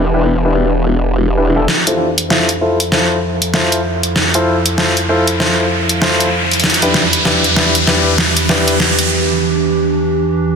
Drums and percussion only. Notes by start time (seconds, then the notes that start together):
1.68 snare
1.87 closed hi-hat
2.18 closed hi-hat
2.30 snare
2.49 closed hi-hat
2.80 closed hi-hat
2.92 snare
3.42 closed hi-hat
3.54 snare
3.72 closed hi-hat
4.03 closed hi-hat
4.16 snare
4.34 closed hi-hat
4.66 closed hi-hat
4.78 snare
4.97 closed hi-hat
5.27 closed hi-hat
5.40 snare
5.89 closed hi-hat
6.02 snare
6.20 closed hi-hat
6.51 closed hi-hat
6.53 closed hi-hat
6.60 closed hi-hat
6.64 snare, closed hi-hat
6.70 closed hi-hat
6.74 closed hi-hat
6.82 closed hi-hat
6.94 snare
7.13 closed hi-hat
7.25 snare
7.44 closed hi-hat
7.56 snare
7.75 closed hi-hat
7.87 snare
8.18 snare
8.37 closed hi-hat
8.49 snare
8.68 closed hi-hat
8.80 snare
8.99 closed hi-hat